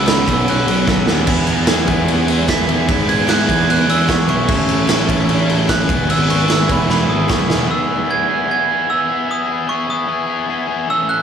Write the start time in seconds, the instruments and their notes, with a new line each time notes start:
Already playing: picked electric bass C#2
0.06 overdriven electric guitar B2 F#3 B3 C#4 F#4, glockenspiel B5, snare, clap, ride
0.26 picked electric bass B1, overdriven electric guitar B2 F#3 B3 C#4 F#4, glockenspiel E6, kick, clap, ride
0.47 overdriven electric guitar B2 F#3 B3 C#4 F#4, glockenspiel F#6, ride
0.67 picked electric bass B1, overdriven electric guitar F#3 C#4 F#4, ride
0.71 overdriven electric guitar B3
0.87 overdriven electric guitar B2 F#3 B3 C#4 F#4, kick, snare, clap
1.06 picked electric bass D#2, overdriven electric guitar B3 C#4 F#4, snare
1.11 overdriven electric guitar F#3
1.26 picked electric bass E2, overdriven electric guitar E3 G#3 B3 E4 G#4, kick, crash
1.47 overdriven electric guitar G#3 B3 E4 G#4, ride
1.67 overdriven electric guitar E3 G#3 B3 E4 G#4, snare, clap, ride
1.87 picked electric bass E2, overdriven electric guitar E3 G#3 B3 E4 G#4, kick, ride
2.08 overdriven electric guitar E3 G#3 B3 E4 G#4, ride
2.26 overdriven electric guitar G#3 B3 E4 G#4, ride
2.32 overdriven electric guitar E4
2.47 overdriven electric guitar E3 G#3 B3 E4, glockenspiel B6, kick, snare, clap, ride
2.52 overdriven electric guitar G#4
2.67 picked electric bass E2, overdriven electric guitar B3 E4 G#4, ride
2.71 overdriven electric guitar G#3
2.87 picked electric bass G#2, overdriven electric guitar E3 G#3 B3 E4 G#4, glockenspiel B6, kick, ride
3.07 overdriven electric guitar G#3 B3 E4 G#4, glockenspiel G#6, ride
3.27 overdriven electric guitar E3 G#3 B3 E4 G#4, glockenspiel F#6, snare, clap, ride
3.47 picked electric bass E2, overdriven electric guitar E3 G#3 B3 E4 G#4, kick, ride
3.51 glockenspiel G#6
3.67 overdriven electric guitar E3 G#3 B3 E4 G#4, glockenspiel F#6, ride
3.88 picked electric bass E2, overdriven electric guitar G#3 B3 E4 G#4, glockenspiel E6, ride
4.07 overdriven electric guitar E3 G#3 B3 E4, glockenspiel C#6, kick, snare, clap, ride
4.11 overdriven electric guitar G#4
4.27 picked electric bass B1, overdriven electric guitar G#3 B3 E4 G#4, glockenspiel C#6, ride
4.47 picked electric bass A1, overdriven electric guitar A2 E3 A3 C#4 E4 A4, kick, crash
4.67 overdriven electric guitar A3 C#4 E4 A4, ride
4.88 overdriven electric guitar E3 A3 C#4 E4 A4, snare, clap, ride
5.08 picked electric bass A1, overdriven electric guitar A2 E3 A3 C#4 E4 A4, kick, ride
5.27 overdriven electric guitar E3 A3 C#4 E4 A4, ride
5.47 overdriven electric guitar A3 C#4 E4 A4, ride
5.51 overdriven electric guitar E4
5.68 overdriven electric guitar A2 E3 A3 C#4 E4 A4, glockenspiel F#6, kick, snare, clap, ride
5.88 picked electric bass E1, overdriven electric guitar E3 G#3 B3 E4 G#4, kick, ride
6.07 picked electric bass G#1, overdriven electric guitar E3 G#3 B3 E4 G#4, glockenspiel E6, ride
6.28 overdriven electric guitar G#3 B3 E4 G#4, glockenspiel C#6, ride
6.48 overdriven electric guitar E3 G#3 B3 E4 G#4, snare, clap, ride
6.52 glockenspiel E6
6.68 picked electric bass E1, overdriven electric guitar E3 G#3 B3 E4 G#4, glockenspiel B5, kick, ride
6.88 overdriven electric guitar E3 G#3 B3 E4 G#4, glockenspiel B5, snare
7.08 picked electric bass G#1, overdriven electric guitar G#3 B3 E4 G#4, glockenspiel D#6
7.28 picked electric bass F#1, overdriven electric guitar E3 G#3 B3 E4 G#4, glockenspiel C#6, kick, snare, clap
7.48 picked electric bass E1, overdriven electric guitar G#3 B3 E4 G#4, snare
7.68 overdriven electric guitar B3 E4 G#4, glockenspiel E6
7.87 overdriven electric guitar E4 G#4
8.07 overdriven electric guitar B3 E4 G#4, glockenspiel G#6
8.28 overdriven electric guitar B3 E4 G#4
8.48 overdriven electric guitar B3 E4 G#4, glockenspiel G#6
8.68 overdriven electric guitar E4 G#4
8.88 overdriven electric guitar B3 E4 G#4, glockenspiel E6
9.08 overdriven electric guitar B3 E4 G#4
9.28 overdriven electric guitar B3 E4 G#4, glockenspiel D#6
9.47 overdriven electric guitar E4 G#4
9.67 overdriven electric guitar B3 E4 G#4, glockenspiel C#6
9.87 overdriven electric guitar B3 E4 G#4, glockenspiel D#6
10.06 overdriven electric guitar B3 E4 G#4
10.26 overdriven electric guitar E4 G#4
10.46 overdriven electric guitar B3 E4 G#4
10.67 overdriven electric guitar B3 E4 G#4
10.87 overdriven electric guitar E3 A3 C#4 A4, glockenspiel E6
11.07 overdriven electric guitar A3 C#4 A4, glockenspiel F#6